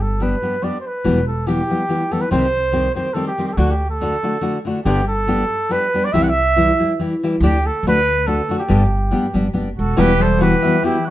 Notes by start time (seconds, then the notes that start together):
Already playing: G1
0.01 A4
0.20 G3 B3 D4 G4 B4
0.42 G3 B3 D4 G4
0.62 G3 B3 D4 G4 D5
0.81 C5
0.87 B4
1.04 E1 E2 B2 E3 G3 B3 G4
1.27 A4
1.47 E3 G3 B3 G4
1.70 E3 G3 B3 G4
1.89 E3 G3 B3 G4
2.11 E3 G3 B3 G4 A4
2.22 B4
2.31 C2 C3 D#3 G3 C4 G4 C5
2.72 D#3 G3 C4 G4
2.95 D#3 G3 C4 G4 C5
3.14 D#3 G3 C4 G4 A4
3.27 G4
3.38 D#3 G3 C4 G4
3.47 G4
3.53 A4
3.57 D2 D3 A3 D4 F#4
3.71 G4
3.91 A4
4.01 D3 A3 D4 F#4
4.23 D3 A3 D4 F#4
4.41 D3 A3 D4 F#4
4.65 D3 A3 D4 F#4
4.85 G1 G2 D3 G3 B3 D4 G4
5.08 A4
5.27 G3 B3 D4 G4
5.69 G3 B3 D4 G4 B4
5.94 G3 B3 D4 G4
6.05 D5
6.13 C2 C3 E3 G3 E4 G4 E5
6.23 F#5
6.29 E5
6.56 E3 G3 E4 G4
6.79 E3 G3 E4 G4
6.99 E3 G3 E4 G4
7.23 E3 G3 E4 G4
7.40 D2 D3 A3 D4 G4
7.67 A4
7.83 D2 D3 A3
7.87 D4 F#4 B4
8.27 D3 A3 D4 F#4 A4
8.49 D3 A3 D4 F#4
8.59 G4
8.68 G1 G2 D3 G3 B3 D4 G4
9.11 G3 B3 D4 G4
9.34 G1 G3 B3 D4 G4
9.53 F#1 G3 B3 D4 G4
9.77 E1 F#4 A4
9.96 E1 E2 B2 E3 G3 B3 F#4 G4 B4
10.19 G3 A4 C5
10.38 E3 G3 B3 F#4 G4 B4
10.63 E3 G3 B3 F#4 E5
10.82 E3 G3 B3 E4 F#4 G4 G5
11.05 F#4 F#6